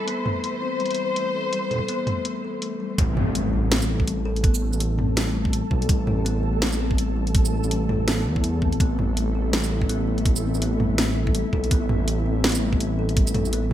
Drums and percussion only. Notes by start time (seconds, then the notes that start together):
0.08 closed hi-hat
0.26 mid tom
0.44 closed hi-hat
0.80 closed hi-hat
0.86 closed hi-hat
0.91 closed hi-hat
0.95 closed hi-hat
1.16 closed hi-hat
1.53 closed hi-hat
1.71 closed hi-hat, mid tom
1.73 mid tom
1.76 mid tom
1.79 mid tom
1.88 closed hi-hat
2.07 closed hi-hat, mid tom
2.25 closed hi-hat
2.62 closed hi-hat
2.98 kick, closed hi-hat
3.17 mid tom
3.35 closed hi-hat
3.72 snare, closed hi-hat
3.82 shaker
4.00 kick
4.08 closed hi-hat
4.36 closed hi-hat
4.44 kick, closed hi-hat
4.54 shaker
4.73 shaker
4.80 closed hi-hat
4.99 mid tom
5.17 snare, closed hi-hat
5.45 kick
5.53 closed hi-hat
5.71 kick
5.82 closed hi-hat
5.89 kick, closed hi-hat
6.07 mid tom
6.26 closed hi-hat
6.62 snare, closed hi-hat
6.72 shaker
6.91 kick
6.98 closed hi-hat
7.27 closed hi-hat
7.35 kick, closed hi-hat
7.45 shaker
7.64 shaker
7.71 closed hi-hat
7.89 mid tom
8.08 snare, closed hi-hat
8.36 kick
8.44 closed hi-hat
8.62 kick
8.72 closed hi-hat
8.80 kick, closed hi-hat
8.99 mid tom
9.17 closed hi-hat
9.53 snare, closed hi-hat
9.64 shaker
9.82 kick
9.89 closed hi-hat
10.18 closed hi-hat
10.25 kick, closed hi-hat
10.36 shaker
10.54 shaker
10.62 closed hi-hat
10.80 mid tom
10.98 snare, closed hi-hat
11.27 kick
11.35 closed hi-hat
11.53 kick
11.64 closed hi-hat
11.71 kick, closed hi-hat
11.89 mid tom
12.08 closed hi-hat
12.44 snare, closed hi-hat
12.47 closed hi-hat
12.50 closed hi-hat
12.52 closed hi-hat, shaker
12.73 kick
12.81 closed hi-hat
13.09 closed hi-hat
13.17 kick, closed hi-hat
13.27 closed hi-hat, shaker
13.34 closed hi-hat, mid tom
13.45 shaker
13.53 closed hi-hat